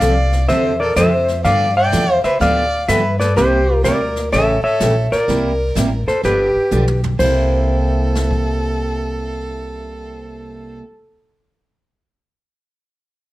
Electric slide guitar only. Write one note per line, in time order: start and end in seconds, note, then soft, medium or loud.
0.00 0.45 D5 medium
0.00 0.48 F5 loud
0.49 0.78 C5 medium
0.49 0.81 E5 loud
0.80 0.96 A#4 medium
0.80 0.97 D5 medium
0.97 1.42 C5 medium
0.97 1.44 E5 loud
1.45 1.74 D5 medium
1.45 1.77 F5 loud
1.77 2.22 E5 medium
1.77 2.21 G5 loud
2.24 2.40 C5 medium
2.24 2.39 E5 loud
2.41 2.86 D5 medium
2.41 2.90 F5 loud
2.88 3.18 B4 medium
2.88 3.19 E5 loud
3.20 3.35 B4 medium
3.20 3.35 D5 medium
3.37 3.82 G4 medium
3.37 3.85 C5 loud
3.84 4.29 A#4 medium
3.84 4.32 D5 loud
4.33 4.62 C#5 medium
4.33 4.63 E5 loud
4.64 5.08 C#5 medium
4.64 5.13 E5 medium
5.12 6.04 A#4 medium
5.12 6.08 D5 medium
6.08 6.23 A4 medium
6.08 6.23 C5 medium
6.25 7.00 G4 medium
6.25 7.00 B4 medium
7.19 10.78 C5 loud